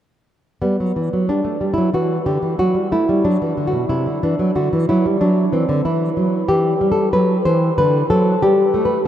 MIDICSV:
0, 0, Header, 1, 2, 480
1, 0, Start_track
1, 0, Key_signature, 1, "major"
1, 0, Tempo, 676437
1, 444, Time_signature, 4, 2, 24, 8
1, 919, Tempo, 655022
1, 3799, Tempo, 640342
1, 6684, End_track
2, 0, Start_track
2, 0, Title_t, "Nylon-string guitar"
2, 0, Program_c, 0, 24
2, 437, Note_on_c, 0, 59, 61
2, 438, Note_on_c, 0, 55, 54
2, 556, Note_off_c, 0, 55, 0
2, 569, Note_on_c, 0, 54, 54
2, 680, Note_off_c, 0, 54, 0
2, 682, Note_on_c, 0, 52, 44
2, 796, Note_off_c, 0, 52, 0
2, 804, Note_on_c, 0, 54, 50
2, 896, Note_off_c, 0, 59, 0
2, 914, Note_off_c, 0, 54, 0
2, 916, Note_on_c, 0, 62, 62
2, 918, Note_on_c, 0, 55, 45
2, 1026, Note_off_c, 0, 55, 0
2, 1028, Note_on_c, 0, 57, 48
2, 1145, Note_off_c, 0, 57, 0
2, 1149, Note_on_c, 0, 55, 51
2, 1219, Note_off_c, 0, 62, 0
2, 1242, Note_on_c, 0, 64, 69
2, 1263, Note_off_c, 0, 55, 0
2, 1273, Note_on_c, 0, 54, 56
2, 1384, Note_off_c, 0, 54, 0
2, 1388, Note_on_c, 0, 52, 53
2, 1389, Note_off_c, 0, 64, 0
2, 1393, Note_on_c, 0, 66, 76
2, 1560, Note_off_c, 0, 52, 0
2, 1620, Note_off_c, 0, 66, 0
2, 1626, Note_on_c, 0, 50, 54
2, 1627, Note_on_c, 0, 67, 61
2, 1742, Note_off_c, 0, 50, 0
2, 1746, Note_on_c, 0, 52, 48
2, 1860, Note_off_c, 0, 67, 0
2, 1863, Note_off_c, 0, 52, 0
2, 1867, Note_on_c, 0, 54, 59
2, 1869, Note_on_c, 0, 66, 74
2, 1982, Note_on_c, 0, 55, 52
2, 1984, Note_off_c, 0, 54, 0
2, 2102, Note_off_c, 0, 55, 0
2, 2102, Note_off_c, 0, 66, 0
2, 2108, Note_on_c, 0, 57, 49
2, 2112, Note_on_c, 0, 64, 62
2, 2226, Note_off_c, 0, 57, 0
2, 2235, Note_on_c, 0, 55, 56
2, 2343, Note_off_c, 0, 64, 0
2, 2348, Note_on_c, 0, 54, 57
2, 2349, Note_on_c, 0, 62, 68
2, 2350, Note_off_c, 0, 55, 0
2, 2467, Note_off_c, 0, 54, 0
2, 2474, Note_on_c, 0, 52, 55
2, 2585, Note_off_c, 0, 52, 0
2, 2588, Note_on_c, 0, 50, 49
2, 2659, Note_off_c, 0, 62, 0
2, 2663, Note_on_c, 0, 66, 62
2, 2703, Note_on_c, 0, 47, 47
2, 2705, Note_off_c, 0, 50, 0
2, 2820, Note_off_c, 0, 47, 0
2, 2821, Note_off_c, 0, 66, 0
2, 2823, Note_on_c, 0, 48, 46
2, 2824, Note_on_c, 0, 64, 65
2, 2943, Note_off_c, 0, 48, 0
2, 2946, Note_on_c, 0, 50, 50
2, 3060, Note_off_c, 0, 64, 0
2, 3065, Note_off_c, 0, 50, 0
2, 3071, Note_on_c, 0, 52, 52
2, 3071, Note_on_c, 0, 62, 63
2, 3185, Note_off_c, 0, 52, 0
2, 3188, Note_on_c, 0, 54, 60
2, 3304, Note_off_c, 0, 54, 0
2, 3307, Note_off_c, 0, 62, 0
2, 3307, Note_on_c, 0, 50, 61
2, 3310, Note_on_c, 0, 66, 73
2, 3428, Note_off_c, 0, 50, 0
2, 3435, Note_on_c, 0, 52, 59
2, 3547, Note_off_c, 0, 66, 0
2, 3552, Note_off_c, 0, 52, 0
2, 3553, Note_on_c, 0, 64, 75
2, 3559, Note_on_c, 0, 54, 57
2, 3673, Note_off_c, 0, 54, 0
2, 3677, Note_on_c, 0, 55, 53
2, 3784, Note_off_c, 0, 64, 0
2, 3787, Note_on_c, 0, 62, 76
2, 3790, Note_on_c, 0, 54, 58
2, 3791, Note_off_c, 0, 55, 0
2, 3966, Note_off_c, 0, 54, 0
2, 4022, Note_off_c, 0, 62, 0
2, 4024, Note_on_c, 0, 52, 55
2, 4029, Note_on_c, 0, 60, 66
2, 4143, Note_off_c, 0, 52, 0
2, 4146, Note_on_c, 0, 50, 66
2, 4262, Note_off_c, 0, 60, 0
2, 4266, Note_off_c, 0, 50, 0
2, 4268, Note_on_c, 0, 64, 74
2, 4272, Note_on_c, 0, 52, 59
2, 4448, Note_off_c, 0, 52, 0
2, 4506, Note_on_c, 0, 54, 54
2, 4686, Note_off_c, 0, 54, 0
2, 4737, Note_off_c, 0, 64, 0
2, 4743, Note_on_c, 0, 67, 71
2, 4745, Note_on_c, 0, 52, 55
2, 4925, Note_off_c, 0, 52, 0
2, 4987, Note_on_c, 0, 55, 58
2, 5060, Note_off_c, 0, 67, 0
2, 5066, Note_on_c, 0, 69, 72
2, 5165, Note_off_c, 0, 55, 0
2, 5224, Note_off_c, 0, 69, 0
2, 5225, Note_on_c, 0, 54, 60
2, 5227, Note_on_c, 0, 71, 78
2, 5405, Note_off_c, 0, 54, 0
2, 5465, Note_off_c, 0, 71, 0
2, 5470, Note_on_c, 0, 72, 84
2, 5473, Note_on_c, 0, 52, 60
2, 5650, Note_off_c, 0, 52, 0
2, 5708, Note_off_c, 0, 72, 0
2, 5714, Note_on_c, 0, 50, 67
2, 5714, Note_on_c, 0, 71, 88
2, 5891, Note_off_c, 0, 50, 0
2, 5949, Note_off_c, 0, 71, 0
2, 5954, Note_on_c, 0, 54, 67
2, 5954, Note_on_c, 0, 69, 83
2, 6131, Note_off_c, 0, 54, 0
2, 6188, Note_off_c, 0, 69, 0
2, 6197, Note_on_c, 0, 67, 84
2, 6203, Note_on_c, 0, 55, 67
2, 6374, Note_off_c, 0, 55, 0
2, 6434, Note_on_c, 0, 57, 58
2, 6505, Note_off_c, 0, 67, 0
2, 6518, Note_on_c, 0, 71, 70
2, 6608, Note_off_c, 0, 57, 0
2, 6670, Note_off_c, 0, 71, 0
2, 6684, End_track
0, 0, End_of_file